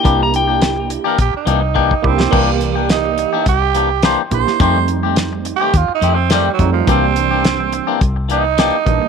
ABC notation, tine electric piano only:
X:1
M:4/4
L:1/8
Q:"Swing 16ths" 1/4=106
K:Cmix
V:1 name="Tine electric piano"
[B,DEG]4 z3 [B,DEG] | [E,B,Gd]4 z3 [B,DEG] | [G,A,C_E]4 z3 [G,A,CE] | [E,G,B,D]4 z3 [E,G,B,D] |]